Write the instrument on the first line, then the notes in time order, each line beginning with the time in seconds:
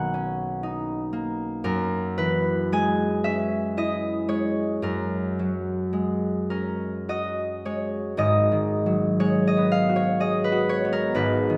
harp
Already playing: B1 D#3 F#3 A#3 D#4 F#4 F#5 B5
0.14 C#4
0.63 D#4
1.13 A#3
1.64 F#2 A#4
2.18 E3 B4
2.72 G#3 G#5
3.24 C#4 E5
3.77 E4 D#5
4.28 G#3 C#5
4.82 F#2 A#4
5.39 F#3
5.93 G#3
6.50 C#4 A#4
7.09 F#4 D#5
7.65 G#3 C#5
8.17 G#1 G#2 D#5
8.52 D#3
8.86 F#3
9.20 G#3 C#5
9.47 D#5
9.57 B3
9.72 F5
9.89 F#4
9.96 C#5
10.20 G#4 D#5
10.44 B4
10.52 F#4
10.69 C#5
10.85 B3
10.93 A#4
11.14 G#1 G#2 B4
11.50 D#3